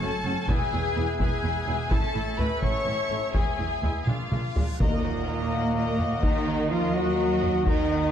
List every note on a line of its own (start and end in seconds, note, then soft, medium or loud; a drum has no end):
0.00 0.08 F#1 medium
0.00 0.10 F#2 medium
0.00 0.10 A3 medium
0.00 0.49 C#4 medium
0.00 0.10 C#4 medium
0.00 0.49 F#4 medium
0.00 0.49 A4 medium
0.00 0.50 A4 medium
0.00 0.49 C#5 medium
0.00 0.48 A5 loud
0.24 0.33 F#1 medium
0.24 0.34 F#2 medium
0.24 0.32 A3 medium
0.24 0.32 C#4 medium
0.24 0.35 C#4 medium
0.24 0.34 F#4 medium
0.48 0.56 E1 medium
0.48 0.57 E2 medium
0.48 0.57 B3 medium
0.48 1.91 B3 medium
0.48 0.57 E4 medium
0.48 4.07 E4 medium
0.48 1.20 G#4 medium
0.48 1.91 B4 medium
0.48 4.07 E5 medium
0.48 1.17 G#5 medium
0.48 taiko medium
0.72 0.80 E1 medium
0.72 0.82 E2 medium
0.72 0.80 B3 medium
0.72 0.80 E4 medium
0.95 1.03 E1 medium
0.95 1.04 E2 medium
0.95 1.03 B3 medium
0.95 1.04 E4 medium
0.99 1.07 B3 medium
0.99 1.07 E4 medium
1.19 1.27 E1 medium
1.19 1.28 E2 medium
1.19 1.28 B3 medium
1.19 1.27 E4 medium
1.19 1.90 G#4 medium
1.19 1.89 G#5 loud
1.19 taiko medium
1.43 1.51 E1 medium
1.43 1.52 E2 medium
1.43 1.51 B3 medium
1.43 1.51 E4 medium
1.67 1.75 E1 medium
1.67 1.76 E2 medium
1.67 1.76 B3 medium
1.67 1.77 B3 medium
1.67 1.75 E4 medium
1.67 1.77 E4 medium
1.90 1.98 A1 medium
1.90 1.99 A2 medium
1.90 1.98 A3 medium
1.90 3.34 C#4 medium
1.90 1.98 E4 medium
1.90 3.34 A4 medium
1.90 2.40 A4 medium
1.90 2.38 A5 medium
1.90 taiko medium
2.15 2.23 A1 medium
2.15 2.23 A2 medium
2.15 2.23 A3 medium
2.15 2.23 E4 medium
2.38 2.46 A1 medium
2.38 2.47 A2 medium
2.38 2.46 A3 medium
2.38 2.47 A3 medium
2.38 2.46 E4 medium
2.38 2.47 E4 medium
2.38 2.63 B4 medium
2.38 2.62 B5 medium
2.38 taiko low medium
2.62 2.71 A1 medium
2.62 2.71 A2 medium
2.62 2.70 A3 medium
2.62 2.70 E4 medium
2.62 3.33 C#5 medium
2.62 3.32 C#6 medium
2.62 taiko medium
2.86 2.94 A1 medium
2.86 2.95 A2 medium
2.86 2.94 A3 medium
2.86 2.94 E4 medium
3.10 3.18 A1 medium
3.10 3.18 A2 medium
3.10 3.18 A3 medium
3.10 3.19 A3 medium
3.10 3.18 E4 soft
3.10 3.20 E4 medium
3.34 3.42 E1 medium
3.34 3.42 E2 medium
3.34 3.42 G#3 medium
3.34 4.07 B3 medium
3.34 3.43 E4 medium
3.34 4.07 G#4 medium
3.34 4.56 G#4 medium
3.34 4.06 G#5 medium
3.34 taiko medium
3.34 reverse cymbal medium
3.58 3.66 E1 medium
3.58 3.67 E2 medium
3.58 3.67 G#3 medium
3.58 3.66 E4 soft
3.82 3.90 E1 soft
3.82 3.90 E2 medium
3.82 3.91 G#3 soft
3.82 3.92 G#3 medium
3.82 3.91 E4 medium
3.82 taiko low medium
4.06 4.14 A#1 medium
4.06 4.14 A#2 medium
4.06 4.16 G#3 soft
4.06 4.57 A#3 medium
4.06 4.16 D4 soft
4.06 4.56 F4 medium
4.06 4.81 F4 medium
4.06 4.56 D5 medium
4.06 4.80 F5 medium
4.06 taiko mid medium
4.30 4.38 A#1 soft
4.30 4.39 A#2 medium
4.30 4.40 G#3 soft
4.30 4.40 D4 soft
4.30 taiko mid medium
4.55 4.64 A#1 soft
4.55 4.63 A#2 soft
4.55 4.64 G#3 soft
4.55 4.65 G#3 medium
4.55 4.64 D4 soft
4.55 4.65 D4 medium
4.55 taiko low medium
4.80 8.12 D#2 medium
4.80 6.19 A#2 medium
4.80 5.48 D#3 medium
4.80 6.19 A#3 medium
4.80 8.12 D#4 medium
4.80 8.12 F#4 medium
4.80 5.02 A#4 medium
4.80 5.02 D#5 medium
4.80 8.12 D#5 medium
4.80 5.03 A#5 medium
4.80 taiko medium
4.80 impact medium
5.04 5.27 A#4 medium
5.04 5.26 D#5 medium
5.04 5.28 F#5 medium
5.27 5.51 A#4 medium
5.27 5.50 D#5 medium
5.27 5.52 A#5 medium
5.52 5.75 A#4 medium
5.52 5.75 D#5 medium
5.52 5.76 F#5 medium
5.76 5.98 A#4 medium
5.76 5.98 D#5 medium
5.76 5.98 A#5 medium
5.99 6.23 A#4 medium
5.99 6.23 D#5 medium
5.99 6.23 F#5 medium
5.99 taiko low-mid soft
6.23 6.71 D#3 medium
6.23 6.71 D#4 medium
6.23 6.70 D#4 medium
6.23 6.47 A#4 medium
6.23 6.46 D#5 medium
6.23 6.47 A#5 medium
6.23 taiko medium
6.46 6.71 A#4 medium
6.46 6.71 D#5 medium
6.46 6.71 F#5 medium
6.69 6.94 F3 medium
6.69 6.94 F4 medium
6.69 6.95 F4 medium
6.69 6.94 A#4 medium
6.69 6.93 D#5 medium
6.69 6.93 A#5 medium
6.94 7.66 F#3 medium
6.94 7.66 F#4 loud
6.94 7.65 F#4 medium
6.94 7.17 A#4 medium
6.94 7.18 D#5 medium
6.94 7.18 F#5 medium
7.18 7.42 A#4 medium
7.18 7.42 D#5 medium
7.18 7.42 A#5 medium
7.42 7.65 A#4 medium
7.42 7.65 D#5 medium
7.42 7.66 F#5 medium
7.42 taiko low-mid medium
7.65 8.12 D#3 medium
7.65 8.12 D#4 loud
7.65 8.12 D#4 medium
7.65 7.88 A#4 medium
7.65 7.88 D#5 medium
7.65 7.87 A#5 medium
7.65 taiko medium
7.89 8.12 A#4 medium
7.89 8.12 D#5 medium
7.89 8.12 F#5 medium